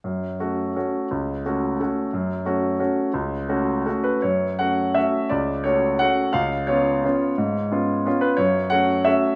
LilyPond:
\new Staff \with { instrumentName = "Grand piano" } { \time 3/4 \key fis \minor \tempo 4 = 173 << { r2. | r2. | r2. | r2 r8 b'8 |
cis''4 fis''4 e''4 | d''4 cis''4 fis''4 | eis''4 cis''2~ | cis''2 r8 b'8 |
cis''4 fis''4 e''4 | } \\ { fis,4 <a cis' fis'>4 <a cis' fis'>4 | cis,4 <a cis' fis'>4 <a cis' fis'>4 | fis,4 <a cis' fis'>4 <a cis' fis'>4 | cis,4 <a cis' fis'>4 <a cis' fis'>4 |
fis,4 <a cis' fis'>4 <a cis' fis'>4 | cis,4 <a cis' fis'>4 <a cis' fis'>4 | cis,4 <b cis' eis'>4 <b cis' eis'>4 | gis,4 <b cis' eis'>4 <b cis' eis'>4 |
fis,4 <a cis' fis'>4 <a cis' fis'>4 | } >> }